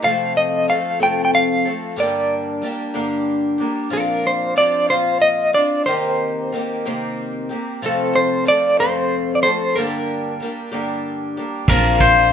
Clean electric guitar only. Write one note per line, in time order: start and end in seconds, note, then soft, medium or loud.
0.04 0.36 F5 medium
0.37 0.66 D#5 medium
0.70 0.98 F5 medium
1.03 1.24 G5 medium
1.25 1.32 G5 medium
1.35 2.00 F5 medium
2.00 3.24 D5 medium
3.93 4.26 A#4 medium
4.27 4.57 C5 medium
4.58 4.87 D5 medium
4.90 5.21 C5 medium
5.22 5.54 D#5 medium
5.54 5.86 D5 medium
5.86 6.55 C5 medium
7.86 8.13 A4 medium
8.15 8.44 C5 medium
8.48 8.80 D5 medium
8.80 9.35 C5 medium
9.35 9.42 D5 medium
9.43 9.76 C5 medium
9.76 11.33 A#4 medium